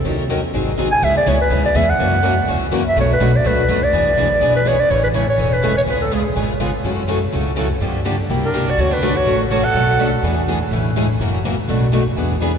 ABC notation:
X:1
M:4/4
L:1/8
Q:"Swing" 1/4=247
K:A
V:1 name="Clarinet"
z6 z g | e d c B2 d e f- | f4- f z2 e | c B2 d B3 d- |
d4- d B c d | c B c c2 B2 c | B A G3 z3 | z8 |
z4 z _B2 d | c B2 c2 z c f- | f3 z4 z | z8 |
z8 |]
V:2 name="Violin"
z8 | z8 | z8 | z8 |
z8 | z8 | z8 | z8 |
z4 z D2 F | F D2 F2 z F A- | A3 z4 z | z8 |
z8 |]
V:3 name="Steel-string acoustic guitar"
[^D,F,C^D^A] z [D,F,CDA] z [D,F,^B,DG] z [D,F,B,DG] z | [C,G,B,EG] z [C,G,B,EG] z [C,G,B,EG] z [C,G,B,EG] z | [F,CE^A] z [F,CEA] z [F,CEA] z [F,CEA] z | [B,,F,A,DFB] z [B,,F,A,DFB] z [B,,F,A,DFB] z [B,,F,A,DFB] z |
[E,B,DGB] z [E,B,DGB] z [E,B,DGB] z [E,B,DGB] z | [E,CE] z [E,G,CEA] z [E,CE] z [E,G,CEA] z | [C,G,B,^EG] z [C,G,B,EG] z [C,G,B,EG] z [C,G,B,EG] z | [F,CEA] z [F,CEA] z [F,CEA] z [F,CEA] z |
[D,=F,_B,D=G] z [D,F,B,DG] z [=C,=G,B,EG] z [C,G,B,EG] z | [D,A,CFA] z [D,A,CFA] z [D,A,CFA] z [D,A,CFA] z | [B,,F,A,DFB] z [B,,F,A,DFB] z [E,B,DGB] z [E,B,DGB] z | [E,CE] z [E,G,CEA] z [F,CE^A] z [F,CEA] z |
[B,,F,A,DFB] z [B,,F,A,DFB] z [E,B,DGB] z [E,B,DGB] z |]
V:4 name="Steel-string acoustic guitar"
[^D,F,C^D^A] z [D,F,CDA] z [D,F,^B,DG] z [D,F,B,DG] z | [C,E,B,CG] z [C,E,B,CG] z [C,E,B,CG] z [C,E,B,CG] z | [C,E,^A,CF] z [C,E,A,CF] z [C,E,A,CF] z [C,E,A,CF] z | [B,,F,A,DF] z [B,,F,A,DF] z [B,,F,A,DF] z [B,,F,A,DF] z |
[E,B,DG] z [E,B,DG] z [E,B,DG] z [E,B,DG] z | [C,E,A,CG] z [C,E,A,CG] z [C,E,A,CG] z [C,E,A,CG] z | [C,G,B,^EG] z [C,G,B,EG] z [C,G,B,EG] z [C,G,B,EG] z | [C,E,A,CF] z [C,E,A,CF] z [C,E,A,CF] z [C,E,A,CF] z |
[D,=F,_B,D=G] z [D,F,B,DG] z [=C,=G,B,EG] z [C,G,B,EG] z | [D,F,A,CF] z [D,F,A,CF] z [D,F,A,CF] z [D,F,A,CF] z | [B,,F,A,DF] z [B,,F,A,DF] z [E,B,DG] z [E,B,DG] z | [C,E,A,CG] z [C,E,A,CG] z [C,E,^A,CF] z [C,E,A,CF] z |
[B,,F,A,DF] z [B,,F,A,DF] z [E,B,DG] z [E,B,DG] z |]
V:5 name="Upright bass" clef=bass
^D,,4 G,,,4 | C,,2 C,,2 D,,2 E,,2 | F,,4 C,,4 | B,,,2 B,,,2 C,,2 D,,2 |
E,,4 B,,,4 | A,,,4 E,,,4 | C,,4 G,,,4 | F,,4 C,,4 |
=G,,4 =C,,4 | D,,4 A,,,4 | B,,,4 E,,4 | A,,,4 F,,,4 |
B,,,4 E,,4 |]